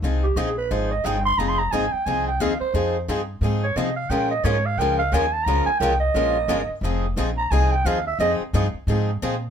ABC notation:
X:1
M:4/4
L:1/16
Q:"Swing" 1/4=176
K:Fm
V:1 name="Clarinet"
z2 G2 A2 =B2 c2 e2 g2 c'2 | (3b2 c'2 b2 a2 g2 a2 g2 f2 c2- | c4 z6 d2 e2 f2 | g2 e2 d2 f2 g2 f2 a2 =a2 |
b2 a2 g2 e8- e2 | z6 b2 a2 g2 f2 =e2 | e2 z12 z2 |]
V:2 name="Steel-string acoustic guitar"
[F,CEA]2 z2 [F,CEA] z3 [F,CEA]2 z2 [F,CEA] z3 | [F,CEA]2 z2 [F,CEA] z3 [F,CEA]2 z2 [F,CEA] z3 | [F,CEA]2 z2 [F,CEA] z3 [F,CEA]2 z2 [F,CEA] z3 | [F,A,DFB]2 z2 [F,A,DFB] z3 [F,A,DFB]2 z2 [F,A,DFB] z3 |
[F,A,DFB]2 z2 [F,A,DFB] z3 [F,A,DFB]2 z2 [F,A,DFB] z3 | [F,CEA]2 z2 [F,CEA] z3 [F,CEA]2 z2 [F,CEA] z3 | [F,CEA]2 z2 [F,CEA] z3 [F,CEA]2 z2 [F,CEA] z3 |]
V:3 name="Steel-string acoustic guitar"
[F,CEA]2 z2 [F,CEA] z3 [F,CEA]2 z2 [F,CEA] z3 | [F,CEA]2 z2 [F,CEA] z3 [F,CEA]2 z2 [F,CEA] z3 | [F,CEA]2 z2 [F,CEA] z3 [F,CEA]2 z2 [F,CEA] z3 | [F,A,DFB]2 z2 [F,A,DFB] z3 [F,A,DFB]2 z2 [F,A,DFB] z3 |
[F,A,DFB]2 z2 [F,A,DFB] z3 [F,A,DFB]2 z2 [F,A,DFB] z3 | [F,CEA]2 z2 [F,CEA] z3 [F,CEA]2 z2 [F,CEA] z3 | [F,CEA]2 z2 [F,CEA] z3 [F,CEA]2 z2 [F,CEA] z3 |]
V:4 name="Upright bass" clef=bass
C,,4 B,,,4 A,,,4 G,,,4 | F,,,4 A,,,2 z2 C,,4 E,,2 z2 | F,,4 G,,4 A,,4 C,4 | B,,4 A,,4 D,,4 E,,4 |
D,,2 z2 C,,4 B,,,4 G,,,2 z2 | F,,,4 B,,,4 C,,4 E,,4 | F,,2 z2 G,,2 z2 A,,4 B,,4 |]